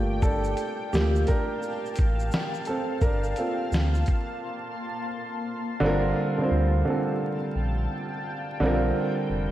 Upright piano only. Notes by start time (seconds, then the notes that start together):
Already playing: A3 A#3 F4
0.23 D4 A4
0.93 A3 A#3 F4 G4
1.28 D4 A#4
2.67 C4 A4
3.02 D4 A#4
3.37 A#3 C4 F4 A4
5.80 D3 G3 C4
5.84 F4 A#4
6.38 D3 G3 C4
6.42 F4 C5
6.85 D3 G3 C4
6.89 F4 A4
8.60 D3 G3 C4
8.64 F4 A#4